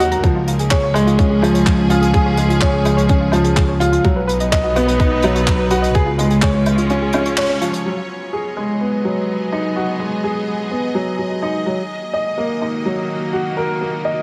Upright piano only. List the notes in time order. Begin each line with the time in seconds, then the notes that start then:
Already playing: F#3 A#3 D#4 A#4 D#5
0.00 F#4
0.23 F3
0.71 C#5
0.94 G#3
1.18 C#4
1.42 F3
1.90 F4
2.13 G#4
2.38 G#3
2.62 C#5
3.10 C#4
3.33 F3
3.57 F3
3.80 F4
4.04 F#3
4.52 D#5
4.76 B3
5.00 D#4
5.24 F#3
5.71 F#4
5.95 G#4
6.19 G#3
6.43 C#5
6.90 C#4
7.14 C#4
7.38 C#5
7.61 F3
7.86 F#3
8.33 G#4
8.57 G#3
8.81 B3
9.05 F#3
9.52 D#4
9.76 F#4
10.00 G#3
10.24 G#4
10.71 B3
10.95 F#3
11.19 F#3
11.42 D#4
11.66 F#3
12.13 D#5
12.38 A#3
12.62 D#4
12.85 F#3
13.33 F#4
13.57 A#4
13.81 A#3
14.05 D#5